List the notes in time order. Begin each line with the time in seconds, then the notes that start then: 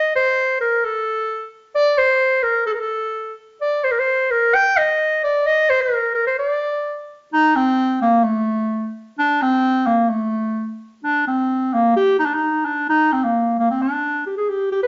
Already playing: D#5
0.16 C5
0.61 A#4
0.84 A4
1.75 D5
1.98 C5
2.43 A#4
2.66 A4
2.74 A#4
2.79 A4
3.61 D5
3.84 C5
3.92 A#4
3.99 C5
4.31 A#4
4.55 G5
4.77 D#5
5.24 D5
5.47 D#5
5.70 C5
5.81 A#4
6.15 A#4
6.27 C5
6.39 D5
7.33 D#4
7.56 C4
8.02 A#3
8.24 A3
9.19 D4
9.42 C4
9.87 A#3
10.10 A3
11.03 D4
11.28 C4
11.74 A#3
11.97 G4
12.19 D#4
12.26 D4
12.34 D#4
12.65 D4
12.90 D#4
13.13 C4
13.24 A#3
13.59 A#3
13.71 C4
13.82 D4
14.27 G4
14.37 G#4
14.50 G4
14.72 G4
14.83 B4